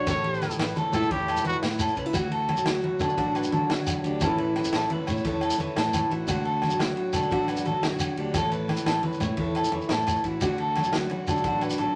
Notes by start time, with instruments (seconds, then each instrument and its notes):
Already playing: clean electric guitar F#4
0.07 fingered electric bass A1, steel-string acoustic guitar A2 A4, trumpet C#5, kick, ride, high conga, low conga, low agogo, shekere
0.16 low conga
0.24 clean electric guitar G4, ride, low conga
0.34 shekere
0.41 steel-string acoustic guitar E3, snare, ride, high conga, low agogo, shekere
0.50 low conga, shekere
0.59 fingered electric bass A1, clean electric guitar B4, snare, ride, low agogo
0.67 shekere
0.76 steel-string acoustic guitar A2, clean electric guitar A4, ride, high conga, shekere
0.93 fingered electric bass A2, steel-string acoustic guitar E4, trumpet A4, ride, low conga, low agogo, shekere
1.02 shekere
1.11 fingered electric bass E2, steel-string acoustic guitar A2 E4, trumpet G4, clean electric guitar C#5, kick, ride, high conga
1.28 clean electric guitar A4, ride, low conga, low agogo, shekere
1.36 low conga, shekere
1.45 fingered electric bass E2, trumpet F#4, clean electric guitar B4, ride, high conga, shekere
1.54 low conga
1.62 fingered electric bass A2, snare, ride, high conga, low agogo
1.71 shekere
1.79 steel-string acoustic guitar A2, clean electric guitar A4, ride, low conga, low agogo, shekere
1.88 shekere
1.96 fingered electric bass C#2, steel-string acoustic guitar C#4, clean electric guitar B4, kick, ride, low conga, shekere
2.06 steel-string acoustic guitar E4
2.13 fingered electric bass D2, clean electric guitar F#4, steel-string acoustic guitar F#4, muted steel-string acoustic guitar stroke, kick, ride, high conga, low conga, low agogo, shekere
2.32 clean electric guitar A4, ride
2.48 steel-string acoustic guitar F#3, ride, high conga, low conga, low agogo
2.57 low conga, shekere
2.66 fingered electric bass D2, clean electric guitar F#4, snare, ride, low conga, low agogo
2.83 steel-string acoustic guitar A2, clean electric guitar F#4, ride, high conga
3.00 fingered electric bass D3, steel-string acoustic guitar D4, clean electric guitar A4, ride, low conga, low agogo, shekere
3.09 shekere
3.17 fingered electric bass A1, steel-string acoustic guitar D3 F#4, kick, ride, high conga, shekere
3.35 clean electric guitar B4, ride, low agogo, shekere
3.43 low conga, shekere
3.52 fingered electric bass A1, steel-string acoustic guitar F#3, clean electric guitar A4, ride, high conga, low conga, shekere
3.62 low conga
3.70 fingered electric bass D3, clean electric guitar F#4, snare, ride, low agogo
3.87 steel-string acoustic guitar A2, ride, high conga, low agogo, shekere
4.04 fingered electric bass D2, steel-string acoustic guitar D4, clean electric guitar G4, ride, low conga, shekere
4.21 fingered electric bass A1, steel-string acoustic guitar A2 E3 C#4, clean electric guitar A4, kick, ride, high conga, low conga, low agogo, shekere
4.25 steel-string acoustic guitar E4 A4
4.38 clean electric guitar B4, ride
4.56 steel-string acoustic guitar E3, snare, ride, high conga, low conga, low agogo
4.64 low conga, shekere
4.73 fingered electric bass A1, clean electric guitar A4, snare, ride, low conga, low agogo
4.90 steel-string acoustic guitar A2, clean electric guitar B4, ride, high conga
5.07 fingered electric bass A2, steel-string acoustic guitar E4, clean electric guitar C#5, ride, low conga, low agogo, shekere
5.17 shekere
5.24 fingered electric bass E2, steel-string acoustic guitar A2 A4, kick, ride, high conga, shekere
5.41 clean electric guitar A4, ride, low conga, low agogo, shekere
5.50 low conga, shekere
5.58 fingered electric bass E2, steel-string acoustic guitar E3, clean electric guitar C#5, ride, high conga, low conga, shekere
5.69 low conga
5.76 fingered electric bass A2, clean electric guitar A4, snare, ride, low agogo
5.87 low conga
5.93 steel-string acoustic guitar A2, ride, high conga, low agogo, shekere
6.10 fingered electric bass A1, steel-string acoustic guitar E4, clean electric guitar F#4, ride, low conga, shekere
6.28 fingered electric bass D2, steel-string acoustic guitar D3 F#4, clean electric guitar F#4, kick, ride, high conga, low conga, low agogo, shekere
6.45 clean electric guitar A4, ride
6.62 steel-string acoustic guitar F#3, snare, ride, high conga, low conga, low agogo
6.70 low conga, shekere
6.79 fingered electric bass D2, clean electric guitar F#4, snare, ride, low conga, low agogo
6.96 steel-string acoustic guitar A2, clean electric guitar F#4, ride
7.13 fingered electric bass D3, steel-string acoustic guitar D4, clean electric guitar A4, ride, low conga, low agogo, shekere
7.31 fingered electric bass A1, steel-string acoustic guitar D3 F#4, kick, ride, high conga, shekere
7.48 clean electric guitar B4, ride, low conga, low agogo, shekere
7.57 low conga, shekere
7.65 fingered electric bass A1, steel-string acoustic guitar F#3, clean electric guitar A4, ride, high conga, low conga
7.75 low conga
7.83 fingered electric bass D3, clean electric guitar F#4, snare, ride, low agogo
7.92 low conga
7.99 muted steel-string acoustic guitar stroke, ride, high conga, low agogo, shekere
8.17 fingered electric bass D2, steel-string acoustic guitar D4, clean electric guitar G4, ride, low conga
8.34 fingered electric bass A1, steel-string acoustic guitar A2 A4, clean electric guitar A4, kick, ride, high conga, low conga, low agogo, shekere
8.43 low conga
8.51 clean electric guitar B4, ride, low conga, shekere
8.61 low conga
8.68 steel-string acoustic guitar E3, snare, ride, high conga, low agogo
8.77 low conga, shekere
8.86 fingered electric bass A1, clean electric guitar A4, snare, ride, low agogo
8.95 low conga
9.03 steel-string acoustic guitar A2, clean electric guitar B4, ride, high conga
9.13 shekere
9.20 fingered electric bass A2, steel-string acoustic guitar E4, clean electric guitar C#5, ride, low conga, low agogo, shekere
9.37 fingered electric bass E2, steel-string acoustic guitar A2 A4, kick, ride, high conga, low conga
9.55 clean electric guitar A4, ride, low agogo, shekere
9.63 low conga, shekere
9.72 fingered electric bass E2, steel-string acoustic guitar E3, clean electric guitar C#5, ride, high conga
9.81 low conga, shekere
9.89 fingered electric bass A2, clean electric guitar A4, snare, ride, low conga, low agogo, shekere
9.98 low conga
10.07 steel-string acoustic guitar A2, ride, high conga, low conga, low agogo, shekere
10.16 shekere
10.24 fingered electric bass A1, steel-string acoustic guitar E4, clean electric guitar F#4, kick, ride, low conga, shekere
10.41 fingered electric bass D2, steel-string acoustic guitar D3 F#4, clean electric guitar F#4, kick, ride, high conga, low conga, low agogo, shekere
10.58 clean electric guitar A4, ride
10.75 steel-string acoustic guitar F#3, snare, ride, high conga, low agogo
10.84 low conga, shekere
10.92 fingered electric bass D2, clean electric guitar F#4, snare, ride, low conga, low agogo
11.10 steel-string acoustic guitar A2, clean electric guitar F#4, ride, high conga
11.27 fingered electric bass D3, steel-string acoustic guitar D4, clean electric guitar A4, ride, low conga, low agogo, shekere
11.36 shekere
11.44 fingered electric bass A1, steel-string acoustic guitar D3 F#4, kick, ride, high conga, shekere
11.61 clean electric guitar B4, ride, low conga, low agogo, shekere
11.70 low conga, shekere
11.78 fingered electric bass A1, steel-string acoustic guitar F#3, clean electric guitar A4, ride, high conga, low conga
11.89 low conga